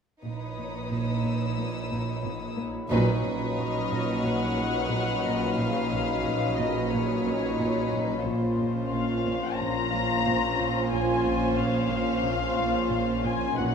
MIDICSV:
0, 0, Header, 1, 11, 480
1, 0, Start_track
1, 0, Tempo, 666667
1, 178, Time_signature, 4, 2, 24, 8
1, 9898, End_track
2, 0, Start_track
2, 0, Title_t, "Violin section"
2, 0, Program_c, 0, 48
2, 175, Note_on_c, 0, 87, 19
2, 661, Note_on_c, 0, 88, 23
2, 1828, Note_off_c, 0, 87, 0
2, 1831, Note_off_c, 0, 88, 0
2, 2107, Note_on_c, 0, 85, 26
2, 2107, Note_on_c, 0, 87, 26
2, 2575, Note_on_c, 0, 89, 27
2, 4066, Note_off_c, 0, 85, 0
2, 4066, Note_on_c, 0, 84, 26
2, 4714, Note_off_c, 0, 84, 0
2, 5668, Note_off_c, 0, 89, 0
2, 5674, Note_off_c, 0, 87, 0
2, 9898, End_track
3, 0, Start_track
3, 0, Title_t, "Violin section"
3, 0, Program_c, 1, 48
3, 175, Note_on_c, 1, 73, 26
3, 1924, Note_off_c, 1, 73, 0
3, 2575, Note_on_c, 1, 75, 46
3, 3027, Note_off_c, 1, 75, 0
3, 3060, Note_on_c, 1, 78, 54
3, 4017, Note_on_c, 1, 77, 53
3, 4019, Note_off_c, 1, 78, 0
3, 4723, Note_off_c, 1, 77, 0
3, 4732, Note_on_c, 1, 75, 46
3, 4974, Note_on_c, 1, 73, 43
3, 4975, Note_off_c, 1, 75, 0
3, 5936, Note_off_c, 1, 73, 0
3, 6413, Note_on_c, 1, 77, 48
3, 6867, Note_off_c, 1, 77, 0
3, 6882, Note_on_c, 1, 82, 59
3, 7850, Note_off_c, 1, 82, 0
3, 7856, Note_on_c, 1, 80, 53
3, 8328, Note_off_c, 1, 80, 0
3, 8330, Note_on_c, 1, 77, 61
3, 9534, Note_off_c, 1, 77, 0
3, 9540, Note_on_c, 1, 80, 60
3, 9765, Note_on_c, 1, 78, 58
3, 9779, Note_off_c, 1, 80, 0
3, 9898, Note_off_c, 1, 78, 0
3, 9898, End_track
4, 0, Start_track
4, 0, Title_t, "Glass harmonica"
4, 0, Program_c, 2, 92
4, 184, Note_on_c, 2, 63, 17
4, 184, Note_on_c, 2, 83, 17
4, 186, Note_on_c, 2, 73, 16
4, 2072, Note_off_c, 2, 63, 0
4, 2072, Note_off_c, 2, 83, 0
4, 2073, Note_off_c, 2, 73, 0
4, 2098, Note_on_c, 2, 75, 32
4, 2101, Note_on_c, 2, 83, 31
4, 2102, Note_on_c, 2, 73, 33
4, 5909, Note_off_c, 2, 75, 0
4, 5911, Note_off_c, 2, 73, 0
4, 5911, Note_off_c, 2, 83, 0
4, 5938, Note_on_c, 2, 84, 24
4, 5941, Note_on_c, 2, 77, 24
4, 5943, Note_on_c, 2, 61, 27
4, 9751, Note_off_c, 2, 61, 0
4, 9778, Note_off_c, 2, 84, 0
4, 9779, Note_off_c, 2, 77, 0
4, 9780, Note_on_c, 2, 85, 32
4, 9782, Note_on_c, 2, 73, 31
4, 9784, Note_on_c, 2, 75, 34
4, 9898, Note_off_c, 2, 73, 0
4, 9898, Note_off_c, 2, 75, 0
4, 9898, Note_off_c, 2, 85, 0
4, 9898, End_track
5, 0, Start_track
5, 0, Title_t, "Harp"
5, 0, Program_c, 3, 46
5, 414, Note_on_c, 3, 73, 17
5, 2821, Note_on_c, 3, 89, 21
5, 3222, Note_off_c, 3, 73, 0
5, 3782, Note_on_c, 3, 75, 25
5, 3786, Note_on_c, 3, 63, 23
5, 5629, Note_off_c, 3, 89, 0
5, 5959, Note_off_c, 3, 75, 0
5, 5961, Note_off_c, 3, 63, 0
5, 7132, Note_on_c, 3, 77, 37
5, 8575, Note_off_c, 3, 77, 0
5, 9898, End_track
6, 0, Start_track
6, 0, Title_t, "Violin section"
6, 0, Program_c, 4, 48
6, 180, Note_on_c, 4, 63, 21
6, 182, Note_on_c, 4, 71, 21
6, 1926, Note_off_c, 4, 63, 0
6, 1927, Note_off_c, 4, 71, 0
6, 2085, Note_on_c, 4, 71, 46
6, 2092, Note_on_c, 4, 63, 46
6, 5903, Note_off_c, 4, 71, 0
6, 5906, Note_off_c, 4, 63, 0
6, 5939, Note_on_c, 4, 65, 37
6, 5940, Note_on_c, 4, 72, 36
6, 9750, Note_off_c, 4, 65, 0
6, 9750, Note_off_c, 4, 72, 0
6, 9786, Note_on_c, 4, 63, 46
6, 9790, Note_on_c, 4, 71, 48
6, 9898, Note_off_c, 4, 63, 0
6, 9898, Note_off_c, 4, 71, 0
6, 9898, End_track
7, 0, Start_track
7, 0, Title_t, "Viola section"
7, 0, Program_c, 5, 48
7, 2094, Note_on_c, 5, 61, 43
7, 2095, Note_on_c, 5, 54, 46
7, 5907, Note_off_c, 5, 61, 0
7, 5908, Note_off_c, 5, 54, 0
7, 5937, Note_on_c, 5, 53, 36
7, 5942, Note_on_c, 5, 61, 39
7, 9749, Note_off_c, 5, 53, 0
7, 9751, Note_off_c, 5, 61, 0
7, 9780, Note_on_c, 5, 54, 52
7, 9780, Note_on_c, 5, 61, 47
7, 9898, Note_off_c, 5, 54, 0
7, 9898, Note_off_c, 5, 61, 0
7, 9898, End_track
8, 0, Start_track
8, 0, Title_t, "Cello section"
8, 0, Program_c, 6, 48
8, 175, Note_on_c, 6, 46, 25
8, 320, Note_off_c, 6, 46, 0
8, 417, Note_on_c, 6, 46, 20
8, 561, Note_off_c, 6, 46, 0
8, 658, Note_on_c, 6, 46, 21
8, 802, Note_off_c, 6, 46, 0
8, 897, Note_on_c, 6, 46, 35
8, 1041, Note_off_c, 6, 46, 0
8, 1136, Note_on_c, 6, 58, 28
8, 1281, Note_off_c, 6, 58, 0
8, 1374, Note_on_c, 6, 46, 34
8, 1519, Note_off_c, 6, 46, 0
8, 1618, Note_on_c, 6, 46, 52
8, 1762, Note_off_c, 6, 46, 0
8, 1857, Note_on_c, 6, 58, 43
8, 2001, Note_off_c, 6, 58, 0
8, 2092, Note_on_c, 6, 46, 48
8, 2238, Note_off_c, 6, 46, 0
8, 2338, Note_on_c, 6, 46, 30
8, 2482, Note_off_c, 6, 46, 0
8, 2575, Note_on_c, 6, 46, 27
8, 2720, Note_off_c, 6, 46, 0
8, 2818, Note_on_c, 6, 46, 40
8, 2962, Note_off_c, 6, 46, 0
8, 3054, Note_on_c, 6, 46, 30
8, 3199, Note_off_c, 6, 46, 0
8, 3292, Note_on_c, 6, 58, 27
8, 3438, Note_off_c, 6, 58, 0
8, 3533, Note_on_c, 6, 46, 39
8, 3679, Note_off_c, 6, 46, 0
8, 3778, Note_on_c, 6, 46, 32
8, 3922, Note_off_c, 6, 46, 0
8, 4017, Note_on_c, 6, 46, 38
8, 4161, Note_off_c, 6, 46, 0
8, 4259, Note_on_c, 6, 46, 29
8, 4402, Note_off_c, 6, 46, 0
8, 4499, Note_on_c, 6, 46, 30
8, 4643, Note_off_c, 6, 46, 0
8, 4735, Note_on_c, 6, 46, 39
8, 4880, Note_off_c, 6, 46, 0
8, 4979, Note_on_c, 6, 46, 31
8, 5123, Note_off_c, 6, 46, 0
8, 5223, Note_on_c, 6, 58, 29
8, 5366, Note_off_c, 6, 58, 0
8, 5459, Note_on_c, 6, 46, 41
8, 5603, Note_off_c, 6, 46, 0
8, 5707, Note_on_c, 6, 46, 31
8, 5848, Note_off_c, 6, 46, 0
8, 5938, Note_on_c, 6, 46, 39
8, 6082, Note_off_c, 6, 46, 0
8, 6180, Note_on_c, 6, 46, 33
8, 6323, Note_off_c, 6, 46, 0
8, 6426, Note_on_c, 6, 46, 31
8, 6568, Note_off_c, 6, 46, 0
8, 6664, Note_on_c, 6, 46, 43
8, 6806, Note_off_c, 6, 46, 0
8, 6904, Note_on_c, 6, 46, 32
8, 7046, Note_off_c, 6, 46, 0
8, 7141, Note_on_c, 6, 58, 30
8, 7284, Note_off_c, 6, 58, 0
8, 7384, Note_on_c, 6, 46, 45
8, 7526, Note_off_c, 6, 46, 0
8, 7626, Note_on_c, 6, 46, 36
8, 7768, Note_off_c, 6, 46, 0
8, 7863, Note_on_c, 6, 46, 47
8, 8005, Note_off_c, 6, 46, 0
8, 8097, Note_on_c, 6, 46, 33
8, 8241, Note_off_c, 6, 46, 0
8, 8337, Note_on_c, 6, 46, 37
8, 8481, Note_off_c, 6, 46, 0
8, 8577, Note_on_c, 6, 46, 51
8, 8721, Note_off_c, 6, 46, 0
8, 8818, Note_on_c, 6, 46, 35
8, 8962, Note_off_c, 6, 46, 0
8, 9062, Note_on_c, 6, 58, 36
8, 9205, Note_off_c, 6, 58, 0
8, 9291, Note_on_c, 6, 46, 56
8, 9437, Note_off_c, 6, 46, 0
8, 9536, Note_on_c, 6, 46, 42
8, 9681, Note_off_c, 6, 46, 0
8, 9778, Note_on_c, 6, 46, 52
8, 9898, Note_off_c, 6, 46, 0
8, 9898, End_track
9, 0, Start_track
9, 0, Title_t, "Cello section"
9, 0, Program_c, 7, 48
9, 179, Note_on_c, 7, 46, 25
9, 1926, Note_off_c, 7, 46, 0
9, 2094, Note_on_c, 7, 46, 50
9, 5907, Note_off_c, 7, 46, 0
9, 5931, Note_on_c, 7, 46, 42
9, 9746, Note_off_c, 7, 46, 0
9, 9775, Note_on_c, 7, 46, 49
9, 9898, Note_off_c, 7, 46, 0
9, 9898, End_track
10, 0, Start_track
10, 0, Title_t, "Double bass section"
10, 0, Program_c, 8, 48
10, 182, Note_on_c, 8, 34, 26
10, 1927, Note_off_c, 8, 34, 0
10, 2092, Note_on_c, 8, 34, 45
10, 2546, Note_off_c, 8, 34, 0
10, 5935, Note_on_c, 8, 34, 36
10, 6387, Note_off_c, 8, 34, 0
10, 9781, Note_on_c, 8, 34, 45
10, 9898, Note_off_c, 8, 34, 0
10, 9898, End_track
11, 0, Start_track
11, 0, Title_t, "Synth drone"
11, 0, Program_c, 10, 95
11, 175, Note_on_c, 10, 34, 48
11, 2068, Note_off_c, 10, 34, 0
11, 2099, Note_on_c, 10, 34, 60
11, 5909, Note_off_c, 10, 34, 0
11, 5936, Note_on_c, 10, 34, 60
11, 9748, Note_off_c, 10, 34, 0
11, 9898, End_track
0, 0, End_of_file